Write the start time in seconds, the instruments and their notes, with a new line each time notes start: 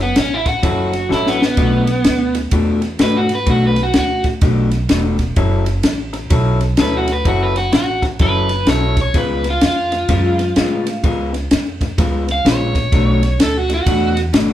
Already playing: upright bass F#1
0.00 overdriven electric guitar B3, muted clean electric guitar stroke
0.16 upright bass A1, overdriven electric guitar C#4, muted clean electric guitar stroke, snare, ride
0.34 overdriven electric guitar E4
0.46 overdriven electric guitar F#4, muted clean electric guitar stroke, kick, snare, ride
0.63 upright bass F#1, clean electric guitar F#3 C#4 E4 A4, kick, snare, ride
0.92 muted clean electric guitar stroke, snare, ride
1.09 upright bass A1, clean electric guitar F#3 C#4 E4 A4, snare
1.14 overdriven electric guitar E4
1.27 overdriven electric guitar B3, snare
1.40 muted clean electric guitar stroke, snare
1.45 overdriven electric guitar B3
1.57 upright bass B1, clean electric guitar B2 A3 D4 F#4, kick, snare, ride
1.87 muted clean electric guitar stroke, snare, ride
2.04 upright bass D2, muted clean electric guitar stroke, snare, ride
2.35 muted clean electric guitar stroke, snare, ride
2.51 upright bass E2, clean electric guitar B2 A3 D4 F#4, kick, ride
2.82 muted clean electric guitar stroke, snare, ride
2.99 upright bass G#2, clean electric guitar B2 A3 D4 F#4, overdriven electric guitar B4, snare, ride
3.17 overdriven electric guitar F#4
3.29 muted clean electric guitar stroke, snare, ride
3.35 overdriven electric guitar B4
3.46 upright bass B1, clean electric guitar B2 A3 D4 F#4, overdriven electric guitar F#4, kick, ride
3.67 overdriven electric guitar B4
3.76 muted clean electric guitar stroke, snare, ride
3.83 overdriven electric guitar F#4
3.94 upright bass D2, muted clean electric guitar stroke, snare, ride
3.98 overdriven electric guitar F#4
4.24 muted clean electric guitar stroke, kick, snare, ride
4.41 upright bass B1, clean electric guitar B2 A3 D4 F#4, kick, snare, ride
4.71 muted clean electric guitar stroke, snare, ride
4.89 upright bass E1, clean electric guitar B2 A3 D4 F#4, snare, ride
5.19 muted clean electric guitar stroke, kick, snare, ride
5.36 upright bass F#1, clean electric guitar F#3 C#4 E4 A4, kick, ride
5.66 muted clean electric guitar stroke, snare, ride
5.83 upright bass A1, muted clean electric guitar stroke, snare, ride
6.13 muted clean electric guitar stroke, snare, ride
6.30 upright bass B1, clean electric guitar F#3 C#4 E4 A4, kick, snare, ride
6.61 muted clean electric guitar stroke, snare, ride
6.77 upright bass D2, clean electric guitar F#3 C#4 E4 A4, snare, ride
6.81 overdriven electric guitar B4
6.97 overdriven electric guitar F#4
7.08 muted clean electric guitar stroke, snare, ride
7.12 overdriven electric guitar B4
7.25 upright bass F#1, clean electric guitar F#3 C#4 E4 A4, overdriven electric guitar F#4, kick, ride
7.43 overdriven electric guitar B4
7.56 overdriven electric guitar F#4, muted clean electric guitar stroke, snare, ride
7.72 upright bass A1, overdriven electric guitar F#4, muted clean electric guitar stroke, snare, ride
8.02 muted clean electric guitar stroke, kick, snare, ride
8.19 upright bass F#1, clean electric guitar F#3 C#4 E4 A4, overdriven electric guitar B4, kick, snare, ride
8.49 muted clean electric guitar stroke, snare, ride
8.66 upright bass B1, clean electric guitar F#3 C#4 E4 A4, overdriven electric guitar C#5, snare, ride
8.97 muted clean electric guitar stroke, kick, snare, ride
9.01 overdriven electric guitar C#5
9.14 upright bass C#2, clean electric guitar C#3 G#3 B3 F4, overdriven electric guitar B4, kick, snare, ride
9.44 muted clean electric guitar stroke, snare, ride
9.50 overdriven electric guitar F4
9.61 upright bass F2, muted clean electric guitar stroke, snare, ride
9.66 overdriven electric guitar F4
9.92 muted clean electric guitar stroke, snare, ride
10.09 upright bass F#2, clean electric guitar C#3 G#3 B3 F4, kick, snare, ride
10.39 muted clean electric guitar stroke, snare, ride
10.56 upright bass A2, clean electric guitar C#3 G#3 B3 F4, snare, ride
10.86 muted clean electric guitar stroke, snare, ride
11.03 upright bass C#2, clean electric guitar C#3 G#3 B3 F4, kick, ride
11.34 muted clean electric guitar stroke, snare, ride
11.51 upright bass F2, muted clean electric guitar stroke, snare, ride
11.81 muted clean electric guitar stroke, kick, snare, ride
11.98 upright bass C#2, clean electric guitar C#3 G#3 B3 F4, kick, snare, ride
12.27 muted clean electric guitar stroke, snare, ride
12.32 overdriven electric guitar F5
12.45 upright bass A#1, clean electric guitar C#3 G#3 B3 F4, overdriven electric guitar C#5, snare, ride
12.75 muted clean electric guitar stroke, kick, snare, ride
12.92 upright bass B1, clean electric guitar B2 A3 D4 F#4, kick, snare, ride
13.23 muted clean electric guitar stroke, snare, ride
13.39 upright bass D2, overdriven electric guitar A4, muted clean electric guitar stroke, snare, ride
13.57 overdriven electric guitar F#4
13.69 muted clean electric guitar stroke, snare, ride
13.74 overdriven electric guitar F#4
13.86 upright bass E2, clean electric guitar B2 A3 D4 F#4, kick, snare, ride
14.17 muted clean electric guitar stroke, snare, ride
14.33 upright bass G#1, clean electric guitar B2 A3 D4 F#4, snare, ride